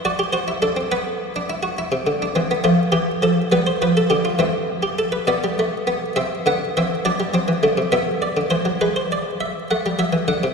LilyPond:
<<
  \new Staff \with { instrumentName = "Harpsichord" } { \time 6/8 \key c \major \tempo 4. = 68 << { d''8 c''8 a'8 b'4. | r4. f'8 g'8 a'8 | b'16 c''16 b'16 a'16 g'16 f'16 e'8. g'16 a'16 b'16 | d''4. e''8 fis''8 e''8 |
d''4. e''8 d''8 c''8 | b'16 c''16 d''8 e''8 fis''8 e''8 fis''8 | } \\ { fis'16 g'16 fis'16 e'16 d'16 c'16 b8. d'16 e'16 fis'16 | e'8. d'16 c'16 b16 a4. | b4. c'4. | b16 g16 a8 b8 c'8 b8 c'8 |
d'8 c'8 a8 b4. | r2. | } >> }
  \new Staff \with { instrumentName = "Harpsichord" } { \clef bass \time 6/8 \key c \major r2. | r16 c16 d8 e8 f8 e8 f8 | g8 f8 d8 e4. | b,4. c8 d8 e8 |
fis16 g16 fis16 e16 d16 c16 b,8. d16 e16 fis16 | gis4. a16 g16 fis16 e16 d16 c16 | }
>>